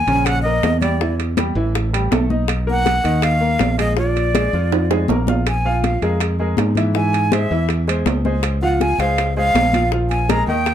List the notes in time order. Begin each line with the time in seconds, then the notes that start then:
Already playing: G#5
0.07 A#1 C#3 C#4, high conga, high timbale
0.26 F#5, high bongo, high conga, high timbale
0.43 A#3 A#4 D#5, high conga
0.63 E2, high bongo, low bongo, high conga, high timbale, low timbale
0.81 G3 G4 D5, high conga, high timbale
1.00 E3 E4, high bongo, high conga
1.20 high bongo, high conga, high timbale
1.37 G3 G4, high bongo, high conga, high timbale, low timbale
1.55 A1 E3 E4, high conga
1.75 high bongo, high conga, high timbale
1.93 G3 G4, high bongo, high conga, high timbale
2.11 B1 A3 A4, high bongo, low bongo, high conga, high timbale, low timbale
2.30 D#4 D#5, high bongo, high conga
2.48 high bongo, high conga, high timbale
2.67 A#3 A#4 F#5, high conga
2.86 high bongo, high conga, high timbale, low timbale
3.04 D#2 D#3 D#4, high conga, high timbale
3.22 F5, high bongo, high conga, high timbale
3.41 A#3 A#4, high conga
3.59 A#1, high bongo, low bongo, high conga, high timbale, low timbale
3.78 G#3 G#4 D#5, high conga, high timbale
3.97 F3 F4 D5, high bongo, high conga
4.16 high bongo, high conga, high timbale
4.34 G#3 G#4, high bongo, high conga, high timbale, low timbale
4.53 F2 F3 F4, high conga
4.72 high bongo, high conga, high timbale
4.90 G#3 G#4, high bongo, high conga, high timbale
5.08 A#1 A#3 A#4, low bongo, high conga, low timbale
5.27 F4 F5, low bongo, high conga, low timbale
5.46 G#5, high bongo, high conga, high timbale
5.65 F3 F4 F5, high conga
5.83 F5, high bongo, high conga, high timbale, low timbale
6.02 F2 G#3 G#4 A#4, high conga, high timbale
6.21 high bongo, high conga, high timbale
6.39 G#3 G#4 A#4, high conga
6.57 G#2, high bongo, low bongo, high conga, high timbale, low timbale
6.75 E3 E4 E5, high conga, high timbale
6.95 E3 E4 E5 G#5, high bongo, high conga
7.13 high bongo, high conga, high timbale
7.32 G#3 G#4 C5 E5, high bongo, high conga, high timbale, low timbale
7.50 E2 E3 E4 E5, high conga
7.69 high bongo, high conga, high timbale
7.88 G#3 G#4 C5, high bongo, high conga, high timbale
8.06 C#2, high bongo, low bongo, high conga, high timbale, low timbale
8.25 G#3 G#4 C5, high bongo, high conga
8.43 high bongo, high conga, high timbale
8.62 F3 F4 F5 F#5, high conga
8.80 G#5, high bongo, high conga, high timbale, low timbale
8.98 C#2 G#3 G#4 C5 F5, high conga, high timbale
9.18 high bongo, high conga, high timbale
9.36 G#3 G#4 C5 F5, high conga
9.54 A#1, high bongo, low bongo, high conga, high timbale, low timbale
9.73 F3 F4 F5, high conga, high timbale
9.92 F3 F4 F5, high bongo, high conga
10.10 G#5, high bongo, high conga, high timbale
10.29 G#3 G#4 A#4 A#5, high bongo, high conga, high timbale, low timbale
10.47 D#2 D#3 D#4 D#5 G5, high conga
10.66 high bongo, high conga, high timbale